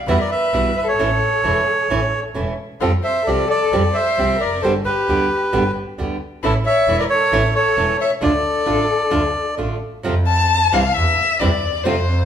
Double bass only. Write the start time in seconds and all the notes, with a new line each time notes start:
0.07 E2
0.52 B1
0.75 G1
0.97 A1
1.43 E1
1.89 A1
2.35 E1
2.81 F2
3.27 C2
3.72 F2
4.18 C2
4.41 F1
4.63 G1
5.09 D2
5.53 G1
5.99 D2
6.44 A1
6.87 E1
7.32 A1
7.77 E1
8.22 D2
8.67 A1
9.13 D2
9.59 A1
10.04 F2
10.72 C2
10.95 E2
11.40 E2
11.64 D#2
11.86 F2